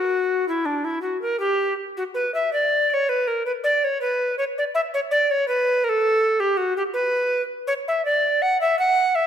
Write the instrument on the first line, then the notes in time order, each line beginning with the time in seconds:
recorder
Already playing: F#4
0.48 E4
0.65 D4
0.84 E4
1.02 F#4
1.22 A#4
1.40 G4
1.97 F#4
2.14 B4
2.34 E5
2.53 D5
2.90 C#5 D5
3.09 B4
3.27 A#4
3.46 B4
3.64 D5
3.84 C#5
4.01 B4
4.38 C#5
4.58 D5
4.75 E5
4.94 C#5
5.11 D5
5.31 C#5
5.48 B4
5.84 A#4
5.89 A4
6.40 G4
6.57 F#4
6.77 G4
6.94 B4
7.67 C#5
7.88 E5
8.05 D5
8.42 F#5
8.61 E5
8.79 F#5
9.15 E5